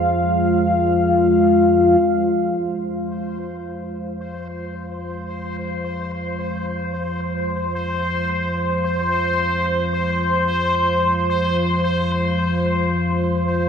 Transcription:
0.00 2.01 F2 medium
0.00 2.02 F3 medium
0.00 13.69 G#3 medium
0.00 13.69 F4 medium
0.00 2.01 C5 medium
0.00 2.05 F5 medium
0.00 13.69 F5 medium
2.02 13.69 F2 medium
2.02 13.69 F3 medium
2.02 13.69 C5 medium
3.12 13.69 C5 medium

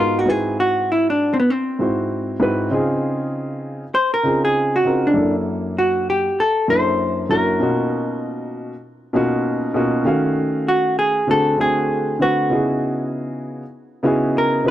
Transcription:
0.00 0.24 G#2 medium
0.00 0.24 B3 medium
0.00 0.24 D#4 medium
0.00 0.19 F4 medium
0.00 0.25 F#4 medium
0.00 0.25 A#4 medium
0.19 0.30 F#4 loud
0.26 1.37 G#2 medium
0.26 1.38 C4 medium
0.26 1.38 E4 medium
0.26 1.38 F#4 medium
0.26 0.60 G#4 loud
0.26 1.39 B4 medium
0.60 0.90 F#4 medium
0.92 1.08 E4 medium
1.10 1.35 D4 medium
1.34 1.38 C4 medium
1.40 1.50 B3 medium
1.50 3.03 C4 medium
1.79 2.35 G#2 medium
1.79 2.35 C4 medium
1.79 2.36 E4 medium
1.79 2.36 F#4 medium
1.79 2.36 C5 medium
2.40 2.68 G#2 medium
2.40 2.68 C4 medium
2.40 2.69 E4 medium
2.40 2.69 F#4 medium
2.40 2.69 B4 medium
2.71 3.82 C#3 medium
2.71 3.82 C4 medium
2.71 3.83 D#4 medium
2.71 3.83 F4 medium
2.71 3.83 G#4 medium
3.95 4.13 C5 loud
4.14 4.44 A#4 loud
4.23 4.80 C#3 medium
4.23 4.80 C4 medium
4.23 4.80 D#4 medium
4.23 4.81 F4 medium
4.23 4.81 G#4 medium
4.45 4.76 G#4 medium
4.76 5.07 F#4 medium
4.84 5.13 C#3 medium
4.84 5.13 C4 medium
4.84 5.13 D#4 medium
4.84 5.14 F4 medium
4.84 5.14 A#4 medium
5.07 5.35 D4 medium
5.14 6.26 F#2 medium
5.14 6.27 A#3 medium
5.14 6.27 D4 medium
5.14 6.27 E4 medium
5.14 6.27 A4 medium
5.78 6.09 F#4 medium
6.10 6.41 G4 medium
6.40 6.70 A4 loud
6.68 7.24 F#2 medium
6.68 7.25 A#3 medium
6.68 7.25 D4 medium
6.68 7.25 E4 medium
6.68 7.26 A4 medium
6.68 7.30 C5 loud
7.29 7.58 F#2 medium
7.29 7.58 A#3 medium
7.29 7.58 D4 medium
7.29 7.59 E4 medium
7.29 7.59 F#4 medium
7.29 8.18 A#4 medium
7.60 8.72 B2 medium
7.60 8.72 A#3 medium
7.60 8.72 C#4 medium
7.60 8.72 D#4 medium
7.60 8.73 F4 medium
7.60 8.73 F#4 medium
9.13 9.69 B2 medium
9.13 9.70 A#3 medium
9.13 9.70 C#4 medium
9.13 9.70 D#4 medium
9.13 9.70 F4 medium
9.13 9.71 F#4 medium
9.74 10.03 B2 medium
9.74 10.03 A#3 medium
9.74 10.03 C#4 medium
9.74 10.03 D#4 medium
9.74 10.04 F4 medium
9.74 10.04 F#4 medium
10.04 11.16 D#3 medium
10.04 11.17 A3 medium
10.04 11.17 C#4 medium
10.04 11.18 F#4 medium
10.04 11.17 F5 medium
10.68 10.96 F#4 medium
10.99 11.30 G#4 loud
11.27 11.56 D3 medium
11.27 11.56 A3 medium
11.27 11.56 C4 medium
11.27 11.56 F#4 medium
11.27 11.57 G#4 medium
11.27 11.58 A4 loud
11.58 12.14 D3 medium
11.58 12.14 A3 medium
11.58 12.15 C4 medium
11.58 12.15 F#4 medium
11.58 12.15 G#4 medium
11.58 12.22 G#4 loud
12.19 12.48 D3 medium
12.19 12.48 A3 medium
12.19 12.48 C4 medium
12.19 12.49 F#4 medium
12.19 13.09 F#4 medium
12.19 12.49 B4 medium
12.50 13.62 C#3 medium
12.50 13.62 B3 medium
12.50 13.62 D#4 medium
12.50 13.62 E4 medium
12.50 13.62 F#4 medium
12.50 13.63 G#4 medium
14.03 14.59 C#3 medium
14.03 14.59 B3 medium
14.03 14.60 D#4 medium
14.03 14.60 E4 medium
14.03 14.60 F#4 medium
14.03 14.60 G#4 loud
14.38 14.68 A#4 medium
14.64 14.71 C#3 medium
14.64 14.71 B3 medium
14.64 14.71 D#4 medium
14.64 14.71 E4 medium
14.64 14.71 F#4 medium
14.64 14.71 B4 medium

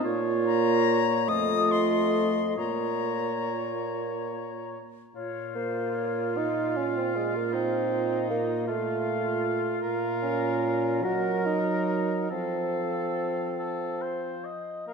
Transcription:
0.03 1.30 A#2 medium
0.03 1.30 A#3 medium
0.03 1.11 F4 medium
0.03 1.29 C#5 medium
0.46 1.30 A#5 loud
1.27 2.59 F2 medium
1.27 2.58 A3 medium
1.27 2.55 F4 medium
1.27 2.57 D#5 medium
1.27 1.73 D#6 loud
1.71 2.58 C6 medium
2.58 4.82 A#2 medium
2.58 4.79 A#3 medium
2.58 4.79 F4 medium
2.58 4.78 C#5 medium
2.58 4.70 A#5 medium
5.15 9.79 A#2 medium
5.15 8.63 F4 medium
5.15 7.54 F4 medium
5.15 5.56 C#5 medium
5.55 6.39 A#3 medium
5.55 5.97 C5 medium
5.95 6.36 C#5 medium
6.36 6.78 D#4 medium
6.36 8.43 F5 medium
6.77 6.98 C#4 medium
6.96 7.17 C4 medium
7.15 7.37 G#3 medium
7.35 7.56 A#3 medium
7.53 8.30 C4 medium
7.53 8.67 D#4 medium
8.31 8.71 A#3 medium
8.67 9.83 A3 medium
8.67 9.80 F4 medium
8.67 11.06 F4 medium
8.67 9.81 F5 medium
9.82 11.05 A#2 medium
9.82 10.99 A#4 medium
9.82 11.06 F5 medium
10.23 11.00 C#4 medium
11.02 12.30 F#3 medium
11.02 11.47 F#4 medium
11.02 12.27 A#4 medium
11.02 12.00 A#4 medium
11.02 12.30 D#5 medium
11.46 12.31 D#4 medium
12.30 14.50 F3 medium
12.30 14.41 C4 medium
12.30 13.48 A4 soft
12.30 14.20 A4 medium
12.30 14.49 F5 medium
13.59 14.03 A4 medium
14.02 14.46 C5 medium
14.44 14.86 D#5 medium
14.87 14.94 A#3 medium
14.87 14.94 A#4 soft
14.87 14.94 F5 soft

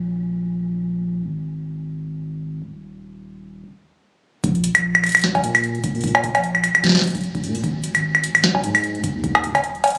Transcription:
0.00 1.22 A#1 medium
1.24 2.62 G#1 medium
2.64 3.64 D#1 medium
4.44 4.69 A#1 loud
4.44 kick loud
4.44 closed hi-hat medium
4.55 closed hi-hat soft
4.64 closed hi-hat medium
4.75 5.09 A#1 medium
4.75 closed hi-hat medium
4.75 high woodblock medium
4.95 closed hi-hat soft
4.95 high woodblock medium
5.04 closed hi-hat soft
5.04 high woodblock medium
5.06 closed hi-hat medium
5.09 closed hi-hat medium
5.12 closed hi-hat medium
5.15 5.39 A#1 loud
5.15 closed hi-hat medium
5.15 open hi-hat medium
5.15 high woodblock medium
5.17 closed hi-hat medium
5.19 closed hi-hat medium
5.21 snare loud
5.21 closed hi-hat medium
5.35 kick medium
5.35 closed hi-hat soft
5.35 cowbell medium
5.44 5.79 A#2 loud
5.44 closed hi-hat medium
5.55 open hi-hat medium
5.55 high woodblock medium
5.64 closed hi-hat medium
5.75 closed hi-hat soft
5.84 5.91 F1 medium
5.84 kick loud
5.84 closed hi-hat loud
5.95 6.29 A#2 medium
5.95 open hi-hat soft
6.01 kick loud
6.01 closed hi-hat medium
6.01 open hi-hat soft
6.07 open hi-hat medium
6.15 closed hi-hat soft
6.15 cowbell loud
6.15 high woodblock medium
6.24 kick medium
6.24 closed hi-hat loud
6.35 6.69 A#1 medium
6.35 closed hi-hat medium
6.35 cowbell medium
6.35 high woodblock medium
6.44 closed hi-hat medium
6.55 closed hi-hat soft
6.55 high woodblock medium
6.64 closed hi-hat loud
6.64 high woodblock medium
6.75 7.05 A#1 loud
6.75 closed hi-hat medium
6.75 high woodblock medium
6.84 kick loud
6.84 snare medium
6.84 closed hi-hat medium
6.86 snare medium
6.89 snare medium
6.92 snare medium
6.95 snare medium
6.95 closed hi-hat soft
6.97 snare loud
6.99 snare loud
7.01 7.45 F1 medium
7.01 snare loud
7.01 closed hi-hat medium
7.07 closed hi-hat medium
7.10 closed hi-hat medium
7.15 kick loud
7.15 closed hi-hat medium
7.17 closed hi-hat soft
7.21 closed hi-hat soft
7.24 closed hi-hat soft
7.35 kick loud
7.35 closed hi-hat soft
7.44 7.58 A#2 medium
7.44 open hi-hat medium
7.55 open hi-hat medium
7.64 7.89 G#1 loud
7.64 kick loud
7.64 closed hi-hat medium
7.84 closed hi-hat loud
7.95 8.29 G#1 medium
7.95 closed hi-hat medium
7.95 high woodblock medium
8.15 closed hi-hat soft
8.15 high woodblock medium
8.24 closed hi-hat loud
8.35 8.59 G#1 loud
8.35 open hi-hat medium
8.35 high woodblock medium
8.44 snare loud
8.44 closed hi-hat medium
8.55 kick medium
8.55 cowbell medium
8.64 8.99 G#2 medium
8.64 closed hi-hat loud
8.75 open hi-hat medium
8.75 high woodblock medium
8.84 closed hi-hat medium
8.95 closed hi-hat soft
9.04 9.11 D#1 medium
9.04 kick loud
9.04 closed hi-hat loud
9.15 9.49 D#2 medium
9.24 kick loud
9.24 closed hi-hat soft
9.35 closed hi-hat soft
9.35 cowbell loud
9.35 high woodblock medium
9.44 kick soft
9.44 closed hi-hat medium
9.46 kick soft
9.49 kick medium
9.52 9.89 D#1 medium
9.52 kick medium
9.52 closed hi-hat medium
9.52 cowbell medium
9.52 high woodblock medium
9.64 closed hi-hat medium
9.75 closed hi-hat soft
9.84 closed hi-hat medium
9.84 cowbell medium
9.87 closed hi-hat medium
9.90 closed hi-hat medium
9.95 9.98 D#1 loud
9.95 closed hi-hat medium

